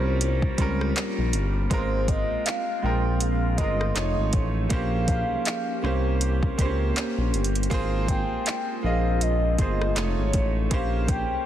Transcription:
Already playing: analog synth bass C2, grand piano G3 C4 C#4 A#4, ambient pad A#3 F4 G4, soft synth lead C5
0.21 closed hi-hat
0.42 kick
0.58 analog synth bass C#2, grand piano G3 C4 C#4 A#4, kick, closed hi-hat
0.81 cross-stick
0.96 clap, closed hi-hat
1.18 analog synth bass A#1
1.33 analog synth bass G1, closed hi-hat
1.70 analog synth bass G#1, grand piano G#3 B3 F4 A#4, ambient pad G#3 C4 F4, soft synth lead C5, kick, closed hi-hat
1.78 grand piano C4
2.08 soft synth lead D#5, kick, closed hi-hat
2.30 analog synth bass A#1
2.46 soft synth lead F5, clap, closed hi-hat
2.82 analog synth bass A#1, grand piano G#3 C4 F4 A#4, soft synth lead G5
3.20 soft synth lead F5, closed hi-hat
3.58 analog synth bass G1, grand piano G#3 C4 F4 A#4, soft synth lead D#5, kick, closed hi-hat
3.81 cross-stick
3.95 analog synth bass F1, grand piano A3 D#4 F4 C#5, ambient pad C#4, clap, closed hi-hat
4.18 analog synth bass G#1
4.33 analog synth bass A1, soft synth lead C#5, kick, closed hi-hat
4.69 analog synth bass A#1, grand piano A#3 C#4 G4 C5, ambient pad A#3 G4, soft synth lead F5, kick, closed hi-hat
5.08 kick, closed hi-hat
5.31 analog synth bass C2
5.45 clap, closed hi-hat
5.82 analog synth bass C2, grand piano A#3 C#4 G4 C5, cross-stick
6.21 closed hi-hat
6.43 kick
6.58 analog synth bass C#2, grand piano A#3 C4 G4 C5, kick, closed hi-hat
6.65 grand piano C#4
6.96 clap, closed hi-hat
7.18 analog synth bass A#1
7.34 analog synth bass G1, closed hi-hat, open hi-hat
7.44 closed hi-hat
7.55 closed hi-hat
7.63 closed hi-hat
7.70 analog synth bass G#1, ambient pad G#3 C4 F4, grand piano A#3 F4 G#4 C5, kick, closed hi-hat
8.08 soft synth lead G5, kick, closed hi-hat
8.31 analog synth bass A#1
8.46 clap, closed hi-hat
8.83 analog synth bass A#1, grand piano A#3 F4 G#4 D#5, soft synth lead F5
9.21 soft synth lead D#5, closed hi-hat
9.58 analog synth bass G1, grand piano A#3 F4 G#4 C5, kick, closed hi-hat
9.81 cross-stick
9.95 analog synth bass F1, grand piano A3 D#4 F4 C#5, ambient pad C#4, soft synth lead C#5, clap, closed hi-hat
10.18 analog synth bass G#1
10.33 analog synth bass A1, kick, closed hi-hat
10.70 analog synth bass A#1, grand piano A#3 C#4 G4 C5, ambient pad A#3 G4, soft synth lead F5, kick, closed hi-hat
11.08 soft synth lead G5, kick, closed hi-hat
11.31 analog synth bass C2

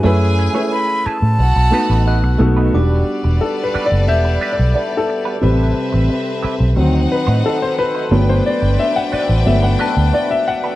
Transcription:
Already playing: flute G#5
0.03 fingered electric bass F#2, grand piano A3 C#4 E4 G#4 B4, clean electric guitar A3 E4 G#4 B4, violin section G#4 G#5, glockenspiel E6
0.38 muted clean electric guitar stroke
0.53 grand piano A3 C#4 E4 G#4 B4, clean electric guitar A3 E4 G#4 C#5
0.72 clean electric guitar A3 E4 G#4 B4, flute B5
0.89 muted clean electric guitar stroke
1.06 clean electric guitar A3 E4 G#4 B4, flute A5, muted fingered electric bass stroke
1.22 fingered electric bass A2, muted clean electric guitar stroke
1.39 fingered electric bass B1, violin section F#4 F#5, muted clean electric guitar stroke
1.56 fingered electric bass B1, muted clean electric guitar stroke
1.71 grand piano A3 B3 D#4 F#4 B4, clean electric guitar A3 D#4 F#4 B4
1.89 fingered electric bass A1, clean electric guitar A3 D#4 F#4 B4
2.07 clean electric guitar A3 D#4 F#4 B4, glockenspiel F#6
2.23 fingered electric bass B1
2.38 fingered electric bass B1, grand piano A3 B3 D#4 F#4 A4, muted clean electric guitar stroke
2.57 clean electric guitar A3 D#4 F#4 B4
2.73 fingered electric bass E1, violin section G3 B3 D5, clean electric guitar G3 D4 F#4 B4, grand piano G3 D4 F#4, glockenspiel D6
3.24 fingered electric bass E1, muted clean electric guitar stroke
3.41 grand piano A4, muted clean electric guitar stroke
3.64 grand piano B4
3.74 clean electric guitar G3 D4 F#4 B4, muted fingered electric bass stroke
3.86 grand piano D5
3.91 fingered electric bass F#1, muted clean electric guitar stroke
4.08 fingered electric bass E1, grand piano E5, glockenspiel G6, muted clean electric guitar stroke
4.25 muted clean electric guitar stroke
4.41 clean electric guitar G3 D4 F#4 B4
4.52 grand piano D5
4.59 fingered electric bass B1
4.75 clean electric guitar G3 D4 F#4 B4
4.97 grand piano A4
5.09 muted clean electric guitar stroke
5.25 clean electric guitar G3 D4 F#4 B4
5.42 fingered electric bass A1, grand piano C3 G3 B4, clean electric guitar G3 C4 E4 B4, violin section C4 B4 E5
5.93 fingered electric bass A1, muted clean electric guitar stroke
6.09 muted clean electric guitar stroke
6.43 clean electric guitar G3 C4 E4 B4, muted fingered electric bass stroke
6.59 fingered electric bass B1, muted clean electric guitar stroke
6.76 fingered electric bass D2, grand piano D#3 F#3 C4, violin section D#4 C5 F#5, muted clean electric guitar stroke
6.93 muted clean electric guitar stroke
7.12 grand piano B4
7.27 fingered electric bass A2, clean electric guitar A3 D#4 F#4 C5
7.44 clean electric guitar A3 D#4 F#4 C5, grand piano A4
7.62 grand piano C5
7.78 grand piano B4, muted clean electric guitar stroke
7.95 clean electric guitar A3 D#4 F#4 C5
8.11 fingered electric bass G1, grand piano F#3 A3 B3, clean electric guitar G#3 C#4 F4 A#4, violin section D4 B4 G5
8.24 clean electric guitar A3 D4 F#4 B4
8.29 grand piano C5
8.46 grand piano D5
8.62 fingered electric bass G1, muted clean electric guitar stroke
8.79 grand piano E5, muted clean electric guitar stroke
8.96 grand piano F#5
9.12 clean electric guitar A3 D4 F#4 B4, grand piano D5, muted fingered electric bass stroke
9.29 fingered electric bass A1, muted clean electric guitar stroke
9.46 fingered electric bass G1, grand piano F#3 A3 B3 E5, muted clean electric guitar stroke
9.63 grand piano F#5, muted clean electric guitar stroke
9.79 clean electric guitar A3 D4 F#4 B4, grand piano A5, glockenspiel F#6
9.96 fingered electric bass D2, muted clean electric guitar stroke
10.13 clean electric guitar A3 D4 F#4 B4, grand piano D5
10.31 grand piano E5
10.47 grand piano F#5, muted clean electric guitar stroke
10.64 clean electric guitar A3 D4 F#4 B4

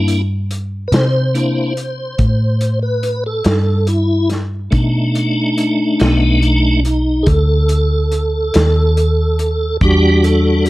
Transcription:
Already playing: fingered electric bass G2, tonewheel organ A#3 D4 E4
0.08 closed hi-hat
0.51 closed hi-hat
0.88 tonewheel organ B4
0.92 fingered electric bass C3, tonewheel organ C5, snare, closed hi-hat
1.35 tonewheel organ A#3 D4 E4, closed hi-hat
1.77 closed hi-hat
2.19 fingered electric bass A2, kick, closed hi-hat
2.61 closed hi-hat
2.83 tonewheel organ B4
3.03 closed hi-hat
3.26 tonewheel organ A4
3.44 fingered electric bass G2, snare, closed hi-hat
3.87 tonewheel organ E4, closed hi-hat
4.30 snare, closed hi-hat
4.71 fingered electric bass B2, tonewheel organ A3 D4 D#4, kick, closed hi-hat
5.15 closed hi-hat
5.58 closed hi-hat
6.00 fingered electric bass B1, tonewheel organ B3, snare, closed hi-hat
6.40 tonewheel organ A3 D4 D#4, closed hi-hat
6.85 tonewheel organ D#4, closed hi-hat
7.23 tonewheel organ G#4, closed hi-hat
7.27 fingered electric bass D2, tonewheel organ A4, kick
7.69 closed hi-hat
8.12 closed hi-hat
8.54 fingered electric bass D#2, snare, closed hi-hat
8.97 closed hi-hat
9.39 closed hi-hat
9.81 fingered electric bass E2, tonewheel organ G3 D4 F#4 G4, kick, closed hi-hat
10.24 tonewheel organ A4, closed hi-hat
10.66 closed hi-hat

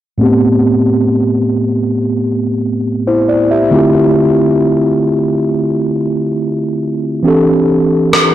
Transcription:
0.18 tine electric piano A2 A3 B3 C4
0.23 tine electric piano G4
3.07 tine electric piano E4 C5
3.29 tine electric piano D5
3.51 tine electric piano G4 E5
3.71 tine electric piano D3 A3 C4 E4 F4
3.76 tine electric piano G4
7.23 tine electric piano E3 C4 D4 G4
7.28 tine electric piano A4
8.13 cross-stick

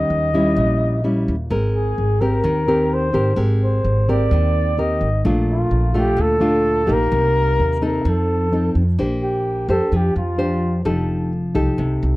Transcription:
Already playing: nylon-string guitar D#3 G3 C#4, flugelhorn D#5
0.10 upright bass D#2
0.34 nylon-string guitar G3 C#4 E4
0.56 upright bass A#1, nylon-string guitar A#2
1.04 nylon-string guitar G3 C#4 E4
1.28 upright bass D#2
1.50 upright bass G#1, nylon-string guitar G#3 C4 A#4
1.75 flugelhorn G#4
1.98 upright bass G#1
2.21 nylon-string guitar C4 G4 A#4, flugelhorn A#4
2.44 upright bass D#2, nylon-string guitar D#3
2.68 nylon-string guitar C4 G4 A#4
2.94 flugelhorn C5
3.13 upright bass G#1, nylon-string guitar C4 G4 A#4
3.36 upright bass G#1, nylon-string guitar G#3 C4 G4 A#4
3.64 flugelhorn C5
3.84 upright bass G#1
4.09 nylon-string guitar C4 G4 A#4, flugelhorn D5
4.31 upright bass D#2, nylon-string guitar D#3
4.78 nylon-string guitar C4 G4 A#4, flugelhorn D#5
5.01 upright bass G#1
5.25 upright bass A#1, nylon-string guitar A#2 A3 D4 F4
5.51 flugelhorn F4
5.71 upright bass A#1
5.94 nylon-string guitar A3 D4 F4, flugelhorn G4
6.17 upright bass D2, nylon-string guitar A#2
6.21 flugelhorn A4
6.40 nylon-string guitar A3 D4 F4
6.87 upright bass A#1, nylon-string guitar A#3 D#4 G4
6.92 flugelhorn A#4
7.12 upright bass C2, nylon-string guitar C3
7.59 upright bass D#2
7.82 nylon-string guitar C4 D#4 A4, flugelhorn A#4
8.05 upright bass F2, nylon-string guitar F3, flugelhorn A4
8.52 nylon-string guitar C4 D#4 A4
8.75 upright bass F2
8.99 upright bass A#1, nylon-string guitar A#3 D4 G4 C5
9.23 flugelhorn G4
9.69 upright bass F2, nylon-string guitar D4 G4 C5, flugelhorn A4
9.92 upright bass F2, nylon-string guitar F3
9.96 flugelhorn G4
10.16 upright bass F2, flugelhorn F4
10.38 nylon-string guitar D4 G4 C5
10.85 upright bass F1, nylon-string guitar F3 D#4 G4 A4
11.55 upright bass C2, nylon-string guitar D#4 G4 A4
11.78 upright bass C2, nylon-string guitar C3
12.03 upright bass C2

